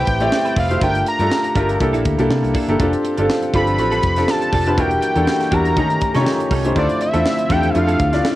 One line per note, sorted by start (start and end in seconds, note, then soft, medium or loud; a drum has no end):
0.00 0.20 A3 medium
0.00 0.21 C4 medium
0.00 0.21 E4 medium
0.00 0.21 G4 medium
0.00 0.83 B4 medium
0.00 0.71 C5 medium
0.00 0.54 G5 loud
0.07 0.28 A1 medium
0.07 muted clean electric guitar stroke soft
0.07 kick medium
0.07 closed hi-hat medium
0.20 0.57 A3 medium
0.20 0.57 C4 medium
0.20 0.57 E4 medium
0.20 0.58 G4 medium
0.20 0.58 D5 medium
0.20 muted clean electric guitar stroke soft
0.20 closed hi-hat soft
0.32 muted clean electric guitar stroke soft
0.32 snare loud
0.45 0.55 G3 soft
0.45 0.56 C4 soft
0.45 0.55 E4 medium
0.45 0.55 B4 medium
0.45 closed hi-hat soft
0.56 0.77 F1 medium
0.56 0.71 G3 medium
0.56 0.70 C4 medium
0.56 0.69 E4 medium
0.56 0.69 B4 medium
0.56 0.81 F5 medium
0.56 kick medium
0.56 open hi-hat medium
0.70 0.79 A3 medium
0.70 0.79 C4 medium
0.70 0.79 E4 medium
0.70 0.79 G4 medium
0.70 0.79 C5 medium
0.70 muted clean electric guitar stroke soft
0.70 closed hi-hat medium
0.81 1.02 G1 loud
0.81 0.96 G3 medium
0.81 1.10 A3 medium
0.81 1.10 D4 medium
0.81 0.95 D4 medium
0.81 1.10 F4 medium
0.81 0.94 F4 medium
0.81 1.10 G4 medium
0.81 1.10 A#4 medium
0.81 0.94 A#4 medium
0.81 1.06 G5 loud
0.81 kick loud
0.81 closed hi-hat medium
0.95 muted clean electric guitar stroke soft
0.95 closed hi-hat medium
1.06 1.78 A#5 loud
1.06 muted clean electric guitar stroke soft
1.06 closed hi-hat medium
1.19 1.29 G2 medium
1.19 1.30 G3 soft
1.19 1.48 A3 medium
1.19 1.48 D4 medium
1.19 1.30 D4 medium
1.19 1.29 F4 soft
1.19 1.48 F4 medium
1.19 1.48 G4 medium
1.19 1.48 A4 medium
1.19 1.29 A#4 medium
1.19 closed hi-hat soft
1.31 muted clean electric guitar stroke soft
1.31 snare loud
1.44 muted clean electric guitar stroke soft
1.44 closed hi-hat soft
1.55 1.76 G1 medium
1.55 1.69 G3 medium
1.55 1.75 A3 medium
1.55 1.69 D4 medium
1.55 1.75 D4 medium
1.55 1.68 F4 medium
1.55 1.75 F4 medium
1.55 1.76 G4 medium
1.55 1.67 A#4 medium
1.55 1.76 A#4 medium
1.55 kick medium
1.55 closed hi-hat medium
1.68 1.79 G3 soft
1.68 1.79 D4 soft
1.68 1.79 F4 medium
1.68 1.78 A#4 medium
1.68 closed hi-hat soft
1.80 1.93 C2 loud
1.80 2.09 A#3 medium
1.80 2.09 D4 medium
1.80 2.09 E4 medium
1.80 2.09 G4 medium
1.80 2.10 A4 medium
1.80 muted clean electric guitar stroke soft
1.80 kick medium
1.80 closed hi-hat medium
1.93 2.03 A#1 medium
1.93 2.03 A#3 medium
1.93 2.04 D4 medium
1.93 2.04 E4 medium
1.93 2.05 A4 medium
1.93 closed hi-hat soft
2.05 2.16 D2 medium
2.05 muted clean electric guitar stroke soft
2.05 kick medium
2.05 closed hi-hat medium
2.18 2.28 C2 medium
2.18 2.55 A#3 medium
2.18 2.55 D4 medium
2.18 2.56 E4 medium
2.18 2.56 G4 medium
2.18 2.56 A4 medium
2.18 muted clean electric guitar stroke soft
2.18 closed hi-hat soft
2.30 2.41 C3 medium
2.30 muted clean electric guitar stroke soft
2.30 snare loud
2.43 2.53 C2 medium
2.43 muted clean electric guitar stroke soft
2.43 closed hi-hat soft
2.54 2.69 A#3 medium
2.54 2.68 D4 medium
2.54 2.68 E4 medium
2.54 2.67 A4 medium
2.54 kick medium
2.54 open hi-hat medium
2.68 2.78 G1 medium
2.68 2.77 A#3 medium
2.68 2.77 D4 medium
2.68 2.77 E4 medium
2.68 2.77 G4 medium
2.68 2.78 A4 medium
2.68 muted clean electric guitar stroke soft
2.68 closed hi-hat medium
2.79 2.91 F1 loud
2.79 4.76 F3 medium
2.79 2.94 G3 medium
2.79 3.08 C4 medium
2.79 2.93 D4 medium
2.79 3.08 D4 medium
2.79 5.74 D4 medium
2.79 3.08 F4 medium
2.79 2.92 F4 medium
2.79 6.72 G4 medium
2.79 3.09 G4 medium
2.79 4.76 A4 medium
2.79 2.91 A4 medium
2.79 3.09 A4 medium
2.79 kick loud
2.79 closed hi-hat medium
2.93 muted clean electric guitar stroke soft
2.93 closed hi-hat medium
3.04 muted clean electric guitar stroke soft
3.04 closed hi-hat medium
3.17 3.27 G1 medium
3.17 3.27 G3 soft
3.17 3.46 C4 medium
3.17 3.46 D4 medium
3.17 3.28 D4 soft
3.17 3.28 F4 medium
3.17 3.46 F4 medium
3.17 3.46 G4 medium
3.17 3.27 A4 medium
3.17 3.46 A4 medium
3.17 closed hi-hat medium
3.29 muted clean electric guitar stroke soft
3.29 snare loud
3.42 muted clean electric guitar stroke soft
3.42 closed hi-hat soft
3.54 3.79 G1 medium
3.54 3.68 G3 medium
3.54 3.73 C4 medium
3.54 3.73 D4 medium
3.54 3.67 D4 medium
3.54 3.73 F4 medium
3.54 3.66 F4 medium
3.54 3.74 G4 medium
3.54 3.74 A4 medium
3.54 3.66 A4 medium
3.54 4.31 B5 loud
3.54 kick medium
3.54 closed hi-hat medium
3.67 3.77 G3 medium
3.67 3.77 D4 medium
3.67 3.77 F4 medium
3.67 3.77 A4 medium
3.67 closed hi-hat soft
3.78 3.99 A1 medium
3.78 4.07 C4 medium
3.78 4.07 D4 medium
3.78 4.07 F4 medium
3.78 4.08 G4 medium
3.78 4.08 A4 medium
3.78 muted clean electric guitar stroke soft
3.78 closed hi-hat medium
3.91 4.02 G3 medium
3.91 4.03 D4 medium
3.91 4.03 F4 medium
3.91 4.03 A4 medium
3.91 closed hi-hat soft
4.03 4.24 F1 medium
4.03 muted clean electric guitar stroke soft
4.03 kick medium
4.03 closed hi-hat medium
4.16 4.54 C4 medium
4.16 4.54 D4 medium
4.16 4.54 F4 medium
4.16 4.54 G4 medium
4.16 4.54 A4 medium
4.16 muted clean electric guitar stroke soft
4.16 snare soft
4.16 closed hi-hat soft
4.28 4.81 A5 loud
4.28 muted clean electric guitar stroke soft
4.28 snare loud
4.41 muted clean electric guitar stroke soft
4.41 closed hi-hat soft
4.52 4.77 F1 medium
4.52 4.67 G3 medium
4.52 4.66 D4 medium
4.52 4.65 F4 medium
4.52 4.65 A4 medium
4.52 kick medium
4.52 open hi-hat medium
4.66 4.75 C4 medium
4.66 4.75 D4 medium
4.66 4.75 F4 medium
4.66 4.75 G4 medium
4.66 4.76 B4 medium
4.66 muted clean electric guitar stroke soft
4.66 closed hi-hat medium
4.77 4.98 E1 loud
4.77 5.76 E3 medium
4.77 5.06 G3 medium
4.77 4.92 A#3 medium
4.77 5.76 A#3 medium
4.77 5.06 D4 medium
4.77 4.91 D4 medium
4.77 5.06 E4 medium
4.77 5.06 F#4 medium
4.77 4.90 G4 medium
4.77 5.06 A#4 medium
4.77 4.90 A#4 medium
4.77 5.55 G5 medium
4.77 kick loud
4.77 closed hi-hat medium
4.91 muted clean electric guitar stroke soft
4.91 closed hi-hat medium
5.02 muted clean electric guitar stroke soft
5.02 closed hi-hat medium
5.15 5.25 E2 medium
5.15 5.43 G3 medium
5.15 5.25 A#3 soft
5.15 5.44 D4 medium
5.15 5.26 D4 soft
5.15 5.44 E4 medium
5.15 5.44 F#4 medium
5.15 5.26 G4 soft
5.15 5.44 A4 medium
5.15 5.25 A#4 medium
5.15 closed hi-hat medium
5.27 muted clean electric guitar stroke soft
5.27 snare loud
5.40 muted clean electric guitar stroke soft
5.40 snare soft
5.40 closed hi-hat soft
5.51 5.78 E2 medium
5.51 5.71 G3 medium
5.51 5.65 A#3 medium
5.51 5.64 D4 medium
5.51 5.71 D4 medium
5.51 5.71 E4 medium
5.51 5.72 F#4 medium
5.51 5.64 G4 medium
5.51 5.72 A#4 medium
5.51 5.63 A#4 medium
5.51 6.52 A#5 medium
5.51 kick medium
5.51 closed hi-hat medium
5.64 5.75 A#3 medium
5.64 5.75 D4 medium
5.64 5.75 G4 medium
5.64 5.74 A#4 medium
5.64 closed hi-hat soft
5.76 5.97 D#3 medium
5.76 6.75 D#3 medium
5.76 5.91 G3 medium
5.76 6.05 A3 medium
5.76 6.75 A3 medium
5.76 5.89 C#4 medium
5.76 6.75 C#4 medium
5.76 6.05 C#4 medium
5.76 5.89 D#4 medium
5.76 6.06 D#4 medium
5.76 6.06 G4 medium
5.76 5.88 A4 medium
5.76 6.06 A#4 medium
5.76 kick medium
5.76 closed hi-hat medium
5.89 muted clean electric guitar stroke soft
5.89 closed hi-hat soft
6.01 muted clean electric guitar stroke soft
6.01 kick medium
6.01 closed hi-hat medium
6.14 6.24 C3 medium
6.14 6.25 G3 soft
6.14 6.51 A3 medium
6.14 6.52 C#4 medium
6.14 6.25 C#4 medium
6.14 6.25 D#4 medium
6.14 6.52 D#4 medium
6.14 6.21 F4 medium
6.14 6.24 A4 medium
6.14 6.52 C#5 medium
6.14 snare soft
6.14 closed hi-hat soft
6.22 6.55 G4 medium
6.26 muted clean electric guitar stroke soft
6.26 snare loud
6.40 muted clean electric guitar stroke soft
6.40 closed hi-hat soft
6.51 6.71 C2 medium
6.51 6.65 G3 medium
6.51 6.64 C#4 medium
6.51 6.63 D#4 medium
6.51 6.63 A4 loud
6.51 kick medium
6.51 open hi-hat medium
6.64 6.73 A3 medium
6.64 6.73 C#4 medium
6.64 6.74 D#4 medium
6.64 6.74 G4 medium
6.64 6.74 C5 medium
6.64 muted clean electric guitar stroke soft
6.64 closed hi-hat medium
6.75 6.87 D2 loud
6.75 8.36 D3 medium
6.75 6.90 F3 medium
6.75 8.36 F3 medium
6.75 7.04 A3 medium
6.75 6.89 C4 medium
6.75 8.36 C4 medium
6.75 7.04 D4 medium
6.75 8.36 D4 medium
6.75 7.05 E4 medium
6.75 6.89 E4 medium
6.75 7.05 F4 medium
6.75 6.88 A4 medium
6.75 7.05 C5 medium
6.75 7.00 D5 medium
6.75 kick loud
6.75 closed hi-hat medium
6.89 muted clean electric guitar stroke medium
6.89 closed hi-hat medium
7.00 7.53 E5 loud
7.00 muted clean electric guitar stroke soft
7.00 closed hi-hat medium
7.13 7.23 E2 medium
7.13 7.24 F3 soft
7.13 7.42 A3 medium
7.13 7.24 C4 soft
7.13 7.42 D4 medium
7.13 7.42 E4 medium
7.13 7.24 E4 medium
7.13 7.42 F4 medium
7.13 7.23 A4 medium
7.13 7.42 C5 medium
7.13 closed hi-hat medium
7.26 snare loud
7.38 muted clean electric guitar stroke medium
7.38 closed hi-hat soft
7.49 7.70 E2 medium
7.49 7.64 F3 medium
7.49 7.69 A3 medium
7.49 7.63 C4 medium
7.49 7.69 D4 medium
7.49 7.69 E4 medium
7.49 7.62 E4 medium
7.49 7.70 F4 medium
7.49 7.70 G4 medium
7.49 7.62 A4 medium
7.49 7.71 G5 loud
7.49 kick medium
7.49 closed hi-hat medium
7.63 7.73 F3 medium
7.63 7.74 C4 medium
7.63 7.73 E4 medium
7.63 7.73 A4 medium
7.63 closed hi-hat soft
7.70 7.78 E5 medium
7.74 7.95 F2 medium
7.74 8.03 A3 medium
7.74 8.03 D4 medium
7.74 8.04 E4 medium
7.74 8.04 F4 medium
7.74 8.04 A4 medium
7.74 8.25 F5 loud
7.74 muted clean electric guitar stroke soft
7.74 closed hi-hat medium
7.88 7.98 F3 medium
7.88 7.99 C4 medium
7.88 7.99 E4 medium
7.88 8.00 A4 medium
7.88 closed hi-hat soft
8.00 8.20 D2 medium
8.00 kick medium
8.00 closed hi-hat medium
8.13 8.36 A3 medium
8.13 8.36 D4 medium
8.13 8.36 E4 medium
8.13 8.36 F4 medium
8.13 8.36 D5 medium
8.13 muted clean electric guitar stroke soft
8.13 snare soft
8.13 closed hi-hat soft
8.24 muted clean electric guitar stroke soft
8.24 snare loud